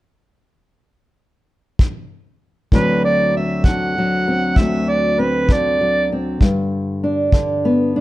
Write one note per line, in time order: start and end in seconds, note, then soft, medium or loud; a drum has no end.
1.79 kick medium
2.72 4.56 D2 medium
2.72 3.65 D3 medium
2.72 3.96 F#3 medium
2.72 3.35 C4 medium
2.72 6.38 F#4 medium
2.72 3.03 B4 medium
2.72 kick medium
3.05 3.34 D5 medium
3.37 4.27 C4 soft
3.37 3.67 E5 medium
3.64 5.48 D3 medium
3.64 4.60 F#5 medium
3.64 kick medium
3.98 5.80 F#3 medium
4.28 5.18 C4 medium
4.56 6.41 D2 medium
4.56 4.91 E5 medium
4.56 kick medium
4.89 5.22 D5 medium
5.19 6.10 C4 medium
5.19 5.54 B4 medium
5.49 7.32 D3 medium
5.49 6.10 D5 medium
5.49 kick medium
5.81 6.41 F#3 soft
6.12 6.38 C4 soft
6.41 8.01 G2 medium
6.41 kick medium
7.04 7.96 D4 soft
7.32 8.01 D3 medium
7.32 kick medium
7.65 8.01 B3 medium
7.96 8.01 D4 medium